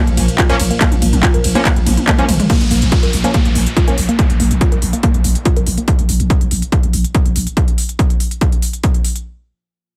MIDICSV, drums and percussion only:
0, 0, Header, 1, 2, 480
1, 0, Start_track
1, 0, Key_signature, -5, "minor"
1, 0, Tempo, 422535
1, 916, Time_signature, 4, 2, 24, 8
1, 11323, End_track
2, 0, Start_track
2, 0, Title_t, "Drums"
2, 83, Note_on_c, 9, 42, 54
2, 197, Note_off_c, 9, 42, 0
2, 197, Note_on_c, 9, 46, 105
2, 197, Note_on_c, 9, 51, 84
2, 311, Note_off_c, 9, 46, 0
2, 311, Note_off_c, 9, 51, 0
2, 322, Note_on_c, 9, 42, 54
2, 435, Note_off_c, 9, 42, 0
2, 436, Note_on_c, 9, 39, 127
2, 436, Note_on_c, 9, 42, 94
2, 437, Note_on_c, 9, 36, 110
2, 550, Note_off_c, 9, 39, 0
2, 550, Note_off_c, 9, 42, 0
2, 551, Note_off_c, 9, 36, 0
2, 562, Note_on_c, 9, 42, 53
2, 676, Note_off_c, 9, 42, 0
2, 677, Note_on_c, 9, 46, 107
2, 677, Note_on_c, 9, 51, 90
2, 790, Note_off_c, 9, 46, 0
2, 790, Note_off_c, 9, 51, 0
2, 802, Note_on_c, 9, 42, 53
2, 916, Note_off_c, 9, 42, 0
2, 917, Note_on_c, 9, 36, 126
2, 917, Note_on_c, 9, 39, 127
2, 917, Note_on_c, 9, 42, 96
2, 1030, Note_off_c, 9, 39, 0
2, 1030, Note_off_c, 9, 42, 0
2, 1031, Note_off_c, 9, 36, 0
2, 1043, Note_on_c, 9, 42, 57
2, 1043, Note_on_c, 9, 47, 89
2, 1156, Note_off_c, 9, 42, 0
2, 1156, Note_off_c, 9, 47, 0
2, 1158, Note_on_c, 9, 46, 103
2, 1158, Note_on_c, 9, 51, 80
2, 1272, Note_off_c, 9, 46, 0
2, 1272, Note_off_c, 9, 51, 0
2, 1284, Note_on_c, 9, 42, 55
2, 1284, Note_on_c, 9, 47, 85
2, 1397, Note_on_c, 9, 36, 118
2, 1398, Note_off_c, 9, 42, 0
2, 1398, Note_off_c, 9, 47, 0
2, 1398, Note_on_c, 9, 39, 127
2, 1398, Note_on_c, 9, 42, 90
2, 1511, Note_off_c, 9, 36, 0
2, 1511, Note_off_c, 9, 39, 0
2, 1511, Note_off_c, 9, 42, 0
2, 1523, Note_on_c, 9, 42, 56
2, 1637, Note_off_c, 9, 42, 0
2, 1638, Note_on_c, 9, 46, 100
2, 1638, Note_on_c, 9, 51, 84
2, 1752, Note_off_c, 9, 46, 0
2, 1752, Note_off_c, 9, 51, 0
2, 1764, Note_on_c, 9, 42, 57
2, 1764, Note_on_c, 9, 47, 92
2, 1877, Note_on_c, 9, 36, 124
2, 1878, Note_off_c, 9, 42, 0
2, 1878, Note_off_c, 9, 47, 0
2, 1879, Note_on_c, 9, 39, 124
2, 1879, Note_on_c, 9, 42, 94
2, 1991, Note_off_c, 9, 36, 0
2, 1992, Note_off_c, 9, 39, 0
2, 1992, Note_off_c, 9, 42, 0
2, 2004, Note_on_c, 9, 42, 55
2, 2117, Note_off_c, 9, 42, 0
2, 2118, Note_on_c, 9, 46, 103
2, 2118, Note_on_c, 9, 48, 65
2, 2118, Note_on_c, 9, 51, 82
2, 2232, Note_off_c, 9, 46, 0
2, 2232, Note_off_c, 9, 48, 0
2, 2232, Note_off_c, 9, 51, 0
2, 2242, Note_on_c, 9, 42, 56
2, 2242, Note_on_c, 9, 48, 63
2, 2356, Note_off_c, 9, 42, 0
2, 2356, Note_off_c, 9, 48, 0
2, 2357, Note_on_c, 9, 36, 110
2, 2357, Note_on_c, 9, 39, 127
2, 2357, Note_on_c, 9, 42, 96
2, 2357, Note_on_c, 9, 47, 80
2, 2471, Note_off_c, 9, 36, 0
2, 2471, Note_off_c, 9, 39, 0
2, 2471, Note_off_c, 9, 42, 0
2, 2471, Note_off_c, 9, 47, 0
2, 2482, Note_on_c, 9, 42, 53
2, 2482, Note_on_c, 9, 47, 72
2, 2596, Note_off_c, 9, 42, 0
2, 2596, Note_off_c, 9, 47, 0
2, 2598, Note_on_c, 9, 45, 102
2, 2598, Note_on_c, 9, 46, 109
2, 2598, Note_on_c, 9, 51, 87
2, 2711, Note_off_c, 9, 45, 0
2, 2711, Note_off_c, 9, 46, 0
2, 2711, Note_off_c, 9, 51, 0
2, 2723, Note_on_c, 9, 42, 55
2, 2723, Note_on_c, 9, 45, 89
2, 2836, Note_off_c, 9, 42, 0
2, 2836, Note_off_c, 9, 45, 0
2, 2837, Note_on_c, 9, 42, 94
2, 2838, Note_on_c, 9, 36, 123
2, 2951, Note_off_c, 9, 36, 0
2, 2951, Note_off_c, 9, 42, 0
2, 2962, Note_on_c, 9, 42, 57
2, 3076, Note_off_c, 9, 42, 0
2, 3076, Note_on_c, 9, 46, 106
2, 3190, Note_off_c, 9, 46, 0
2, 3202, Note_on_c, 9, 42, 57
2, 3316, Note_off_c, 9, 42, 0
2, 3316, Note_on_c, 9, 42, 92
2, 3318, Note_on_c, 9, 36, 115
2, 3430, Note_off_c, 9, 42, 0
2, 3431, Note_off_c, 9, 36, 0
2, 3442, Note_on_c, 9, 42, 54
2, 3556, Note_off_c, 9, 42, 0
2, 3557, Note_on_c, 9, 46, 104
2, 3670, Note_off_c, 9, 46, 0
2, 3682, Note_on_c, 9, 42, 56
2, 3796, Note_off_c, 9, 42, 0
2, 3796, Note_on_c, 9, 42, 90
2, 3798, Note_on_c, 9, 36, 123
2, 3910, Note_off_c, 9, 42, 0
2, 3911, Note_off_c, 9, 36, 0
2, 3922, Note_on_c, 9, 42, 53
2, 4035, Note_off_c, 9, 42, 0
2, 4037, Note_on_c, 9, 46, 104
2, 4150, Note_off_c, 9, 46, 0
2, 4163, Note_on_c, 9, 42, 57
2, 4277, Note_off_c, 9, 42, 0
2, 4278, Note_on_c, 9, 36, 117
2, 4278, Note_on_c, 9, 42, 97
2, 4391, Note_off_c, 9, 36, 0
2, 4391, Note_off_c, 9, 42, 0
2, 4404, Note_on_c, 9, 42, 54
2, 4517, Note_off_c, 9, 42, 0
2, 4518, Note_on_c, 9, 46, 106
2, 4631, Note_off_c, 9, 46, 0
2, 4644, Note_on_c, 9, 42, 56
2, 4757, Note_off_c, 9, 42, 0
2, 4757, Note_on_c, 9, 42, 93
2, 4758, Note_on_c, 9, 36, 127
2, 4871, Note_off_c, 9, 36, 0
2, 4871, Note_off_c, 9, 42, 0
2, 4882, Note_on_c, 9, 42, 58
2, 4996, Note_off_c, 9, 42, 0
2, 4996, Note_on_c, 9, 46, 105
2, 5110, Note_off_c, 9, 46, 0
2, 5122, Note_on_c, 9, 42, 55
2, 5235, Note_off_c, 9, 42, 0
2, 5237, Note_on_c, 9, 36, 126
2, 5237, Note_on_c, 9, 42, 94
2, 5350, Note_off_c, 9, 42, 0
2, 5351, Note_off_c, 9, 36, 0
2, 5362, Note_on_c, 9, 42, 56
2, 5476, Note_off_c, 9, 42, 0
2, 5476, Note_on_c, 9, 46, 103
2, 5589, Note_off_c, 9, 46, 0
2, 5602, Note_on_c, 9, 42, 55
2, 5716, Note_off_c, 9, 42, 0
2, 5716, Note_on_c, 9, 42, 94
2, 5717, Note_on_c, 9, 36, 123
2, 5830, Note_off_c, 9, 42, 0
2, 5831, Note_off_c, 9, 36, 0
2, 5842, Note_on_c, 9, 42, 54
2, 5955, Note_off_c, 9, 42, 0
2, 5956, Note_on_c, 9, 46, 111
2, 6070, Note_off_c, 9, 46, 0
2, 6081, Note_on_c, 9, 42, 55
2, 6195, Note_off_c, 9, 42, 0
2, 6196, Note_on_c, 9, 42, 95
2, 6197, Note_on_c, 9, 36, 115
2, 6310, Note_off_c, 9, 36, 0
2, 6310, Note_off_c, 9, 42, 0
2, 6322, Note_on_c, 9, 42, 53
2, 6435, Note_off_c, 9, 42, 0
2, 6436, Note_on_c, 9, 46, 111
2, 6549, Note_off_c, 9, 46, 0
2, 6561, Note_on_c, 9, 42, 56
2, 6675, Note_off_c, 9, 42, 0
2, 6676, Note_on_c, 9, 42, 94
2, 6677, Note_on_c, 9, 36, 127
2, 6790, Note_off_c, 9, 42, 0
2, 6791, Note_off_c, 9, 36, 0
2, 6801, Note_on_c, 9, 42, 54
2, 6915, Note_off_c, 9, 42, 0
2, 6916, Note_on_c, 9, 46, 107
2, 7030, Note_off_c, 9, 46, 0
2, 7042, Note_on_c, 9, 42, 53
2, 7156, Note_off_c, 9, 42, 0
2, 7157, Note_on_c, 9, 36, 126
2, 7157, Note_on_c, 9, 42, 90
2, 7271, Note_off_c, 9, 36, 0
2, 7271, Note_off_c, 9, 42, 0
2, 7283, Note_on_c, 9, 42, 54
2, 7396, Note_off_c, 9, 42, 0
2, 7397, Note_on_c, 9, 46, 110
2, 7511, Note_off_c, 9, 46, 0
2, 7524, Note_on_c, 9, 42, 54
2, 7637, Note_off_c, 9, 42, 0
2, 7637, Note_on_c, 9, 36, 125
2, 7637, Note_on_c, 9, 42, 91
2, 7751, Note_off_c, 9, 36, 0
2, 7751, Note_off_c, 9, 42, 0
2, 7763, Note_on_c, 9, 42, 53
2, 7876, Note_off_c, 9, 42, 0
2, 7877, Note_on_c, 9, 46, 107
2, 7991, Note_off_c, 9, 46, 0
2, 8003, Note_on_c, 9, 42, 53
2, 8117, Note_off_c, 9, 42, 0
2, 8117, Note_on_c, 9, 42, 91
2, 8118, Note_on_c, 9, 36, 120
2, 8231, Note_off_c, 9, 36, 0
2, 8231, Note_off_c, 9, 42, 0
2, 8243, Note_on_c, 9, 42, 52
2, 8357, Note_off_c, 9, 42, 0
2, 8358, Note_on_c, 9, 46, 113
2, 8471, Note_off_c, 9, 46, 0
2, 8483, Note_on_c, 9, 42, 55
2, 8597, Note_off_c, 9, 42, 0
2, 8597, Note_on_c, 9, 42, 86
2, 8598, Note_on_c, 9, 36, 122
2, 8711, Note_off_c, 9, 36, 0
2, 8711, Note_off_c, 9, 42, 0
2, 8723, Note_on_c, 9, 42, 53
2, 8836, Note_off_c, 9, 42, 0
2, 8838, Note_on_c, 9, 46, 107
2, 8952, Note_off_c, 9, 46, 0
2, 8964, Note_on_c, 9, 42, 51
2, 9078, Note_off_c, 9, 42, 0
2, 9078, Note_on_c, 9, 36, 120
2, 9079, Note_on_c, 9, 42, 85
2, 9191, Note_off_c, 9, 36, 0
2, 9192, Note_off_c, 9, 42, 0
2, 9204, Note_on_c, 9, 42, 51
2, 9318, Note_off_c, 9, 42, 0
2, 9318, Note_on_c, 9, 46, 105
2, 9431, Note_off_c, 9, 46, 0
2, 9443, Note_on_c, 9, 42, 51
2, 9556, Note_off_c, 9, 42, 0
2, 9557, Note_on_c, 9, 42, 86
2, 9558, Note_on_c, 9, 36, 121
2, 9671, Note_off_c, 9, 36, 0
2, 9671, Note_off_c, 9, 42, 0
2, 9683, Note_on_c, 9, 42, 51
2, 9797, Note_off_c, 9, 42, 0
2, 9797, Note_on_c, 9, 46, 106
2, 9910, Note_off_c, 9, 46, 0
2, 9922, Note_on_c, 9, 42, 52
2, 10036, Note_off_c, 9, 42, 0
2, 10037, Note_on_c, 9, 42, 86
2, 10038, Note_on_c, 9, 36, 114
2, 10150, Note_off_c, 9, 42, 0
2, 10152, Note_off_c, 9, 36, 0
2, 10161, Note_on_c, 9, 42, 49
2, 10274, Note_off_c, 9, 42, 0
2, 10275, Note_on_c, 9, 46, 110
2, 10389, Note_off_c, 9, 46, 0
2, 10401, Note_on_c, 9, 42, 49
2, 10515, Note_off_c, 9, 42, 0
2, 11323, End_track
0, 0, End_of_file